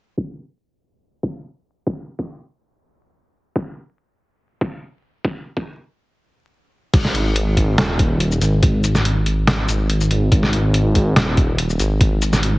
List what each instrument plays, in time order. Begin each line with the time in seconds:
0.17 kick
1.23 kick
1.87 kick
2.19 kick
3.56 kick
4.61 kick
5.25 kick
5.57 kick
6.94 detuned saw bass G#1, kick, closed hi-hat, crash
7.05 snare
7.15 closed hi-hat
7.36 closed hi-hat
7.57 kick, closed hi-hat
7.78 detuned saw bass D#1, snare, closed hi-hat
7.99 kick, closed hi-hat
8.20 closed hi-hat
8.31 shaker
8.41 detuned saw bass G#1, closed hi-hat, shaker
8.63 kick, closed hi-hat
8.84 closed hi-hat, shaker
8.95 snare, shaker
9.05 closed hi-hat
9.26 closed hi-hat
9.47 snare, closed hi-hat
9.68 detuned saw bass G#1, closed hi-hat, shaker
9.90 closed hi-hat
10.01 shaker
10.10 detuned saw bass G#1, closed hi-hat
10.32 detuned saw bass G#1, kick, closed hi-hat
10.43 snare
10.53 closed hi-hat
10.74 closed hi-hat
10.95 kick, closed hi-hat
11.16 detuned saw bass D#1, snare, closed hi-hat
11.37 kick, closed hi-hat
11.58 closed hi-hat
11.70 shaker
11.79 detuned saw bass G#1, closed hi-hat, shaker
12.01 kick, closed hi-hat
12.22 closed hi-hat, shaker
12.33 snare, shaker
12.43 closed hi-hat